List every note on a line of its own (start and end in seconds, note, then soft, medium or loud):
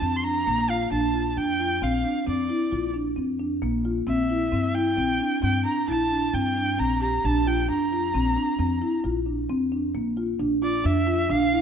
0.00 0.44 F2 medium
0.00 0.16 C4 medium
0.00 0.18 A5 medium
0.16 0.26 C6 medium
0.23 0.38 D4 medium
0.23 0.71 A#5 loud
0.46 0.89 A#1 medium
0.46 0.61 A#3 medium
0.69 0.84 F4 medium
0.69 0.91 F5 medium
0.91 1.34 A#1 medium
0.91 1.06 D4 medium
0.91 1.30 A5 medium
1.14 1.29 F4 medium
1.30 1.38 A5 medium
1.37 1.79 F2 medium
1.37 1.52 D4 medium
1.37 1.84 G5 medium
1.60 1.74 F4 medium
1.82 2.03 A#1 medium
1.82 1.97 C4 medium
1.82 2.27 F5 medium
2.04 2.19 D4 medium
2.27 2.48 F2 medium
2.27 2.42 C4 medium
2.27 2.91 D5 medium
2.49 2.64 E4 medium
2.72 3.15 A#1 medium
2.72 2.87 F4 medium
2.94 3.09 D4 medium
3.16 3.60 F2 medium
3.16 3.32 C4 medium
3.39 3.55 D4 medium
3.62 4.05 A#1 medium
3.62 3.77 A#3 medium
3.85 4.00 F4 medium
4.07 4.50 A#1 medium
4.07 4.22 C4 medium
4.07 4.77 E5 medium
4.30 4.45 E4 medium
4.52 4.95 G2 medium
4.52 4.67 C4 medium
4.74 4.90 E4 medium
4.74 5.43 G5 medium
4.97 5.19 A#1 medium
4.97 5.12 C4 medium
5.20 5.35 D4 medium
5.42 5.64 G2 medium
5.42 5.57 C4 medium
5.42 5.64 G5 medium
5.65 5.81 D4 medium
5.65 5.86 A#5 medium
5.88 6.31 A#1 medium
5.88 6.03 E4 medium
5.88 6.35 A5 medium
6.11 6.26 D4 medium
6.34 6.76 G2 medium
6.34 6.49 C4 medium
6.34 6.81 G5 medium
6.56 6.71 D4 medium
6.79 7.21 A#1 medium
6.79 6.94 C4 medium
6.79 7.01 A#5 medium
7.01 7.16 G4 medium
7.01 7.26 A#5 medium
7.24 7.67 A#1 medium
7.24 7.39 D4 medium
7.24 7.49 A5 medium
7.47 7.62 F4 medium
7.47 7.69 G5 medium
7.69 8.12 F2 medium
7.69 7.84 D4 medium
7.69 9.01 A#5 medium
7.92 8.07 F4 medium
8.14 8.36 A#1 medium
8.14 8.29 C4 medium
8.37 8.52 D4 medium
8.59 8.80 F2 medium
8.59 8.74 C4 medium
8.82 8.97 E4 medium
9.04 9.47 A#1 medium
9.04 9.19 F4 medium
9.26 9.41 D4 soft
9.49 9.92 F2 medium
9.49 9.64 C4 medium
9.72 9.87 D4 medium
9.95 10.37 A#1 medium
9.95 10.10 A#3 medium
10.17 10.32 F4 medium
10.39 10.82 A#1 medium
10.39 10.54 D4 medium
10.62 10.77 F4 medium
10.62 10.87 D5 medium
10.84 11.27 F2 medium
10.84 10.99 D4 medium
10.84 11.32 E5 medium
11.07 11.22 F4 medium
11.30 11.62 A#1 medium
11.30 11.45 D4 medium
11.30 11.62 F5 medium
11.52 11.62 E4 medium